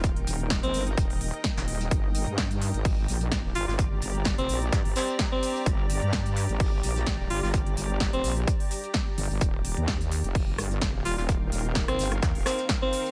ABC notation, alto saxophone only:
X:1
M:4/4
L:1/16
Q:"Swing 16ths" 1/4=128
K:Gm
V:1 name="Alto saxophone"
z4 z C2 z8 z | z12 z2 F F | z4 z C2 z3 C2 z C3 | z12 z2 F F |
z4 z C2 z8 z | z12 z2 F F | z4 z C2 z3 C2 z C3 |]